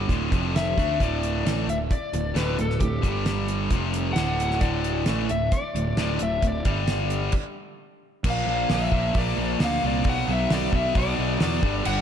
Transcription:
0.09 D1 D2 A2 D3, kick, closed hi-hat
0.32 F1 F2 C3 F3, kick, closed hi-hat
0.56 E5, snare, closed hi-hat
0.77 D2 D3 A3 D4, kick, closed hi-hat
1.00 D1 D2 A2 D3 D5, kick, closed hi-hat
1.23 closed hi-hat
1.45 A1 A2 E3 A3, snare, closed hi-hat
1.68 D1 D2 A2 E5, closed hi-hat
1.91 D5, kick, closed hi-hat
2.13 D1 D2 A2, closed hi-hat
2.34 D1 D2 A2 D3 B4, snare, closed hi-hat
2.57 D1 D2 A2, closed hi-hat
2.61 A4
2.70 snare
2.79 D1 D2 A2 G4, kick, closed hi-hat
3.02 G1 G2 D3 G3, kick, closed hi-hat
3.26 snare, closed hi-hat
3.48 closed hi-hat
3.71 F1 F2 C3 F3, kick, closed hi-hat
3.94 closed hi-hat
4.13 D1 D2 A2 F#5, snare, closed hi-hat
4.17 D3
4.40 closed hi-hat
4.51 snare
4.61 D1 D2 A2 D3 D5, kick, closed hi-hat
4.84 closed hi-hat
5.06 A1 A2 E3 A3, snare, closed hi-hat
5.29 D1 D2 A2 E5, closed hi-hat
5.52 D5, kick, closed hi-hat
5.75 D1 D2 A2, closed hi-hat
5.97 D1 D2 A2 D3 D5, snare, closed hi-hat
6.19 D1 D2 A2 E5, closed hi-hat
6.42 D1 D2 A2, kick, closed hi-hat
6.48 D5
6.65 G1 G2 D3 G3, kick, closed hi-hat
6.88 snare, closed hi-hat
7.10 closed hi-hat
7.32 kick, crash
8.24 A#1 A#2 F3 A#3, kick, crash
8.30 F5
8.46 A#1 A#2 F3 A#3
8.69 A#1 A#2 F3 A#3, snare, open hi-hat
8.74 E5
8.92 A#1 A#2 F3 A#3, kick
9.14 A#1 A#2 F3 A#3, kick, open hi-hat
9.18 D5
9.37 A#1 A#2 F3 A#3
9.60 D2 A#2 F3 A#3, snare, open hi-hat
9.64 F5
9.84 C2 A#2 F3 A#3 D5
10.04 B1 B2 F#3 B3, kick, open hi-hat
10.09 F#5
10.28 B1 B2 F#3 B3
10.33 E5
10.50 B1 B2 F#3 B3 D5, snare, open hi-hat
10.72 B1 B2 F#3 B3 E5, kick
10.95 B1 B2 F#3 B3 D5, kick, open hi-hat
11.17 B1 B2 F#3 B3
11.40 E2 B2 F#3 B3 D5, snare, open hi-hat
11.62 G1 G2 D3 G3, kick
11.84 G1 G2 D3 G3 F#5, crash

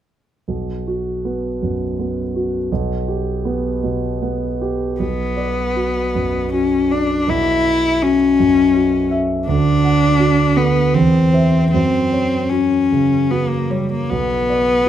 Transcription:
0.48 B1
0.87 F#4
1.25 B3
1.62 F#2
1.99 B3
2.36 F#4
2.72 B1
3.08 G4
3.45 B3
3.83 B2
4.22 B3
4.62 G4
5.00 B1 B3
5.37 D5
5.76 F#4
6.15 F#2
6.53 C#4 F#4
6.91 D4 D5
7.28 B1 E4
7.65 E5
8.02 C#4 F#4
8.40 F#2
8.75 F#4
9.11 E5
9.47 D2 D4
9.84 F#5
10.20 F#4
10.56 D3 B3
10.94 E2 C4
11.33 C5 E5
11.71 F#2 C4
12.12 C#5
12.49 C#4 F#4
12.92 C#3
13.30 B3 F#4
13.49 A#3
13.70 G3 C#5
13.92 A#3
14.10 B1 B3
14.49 D5
14.86 F#4

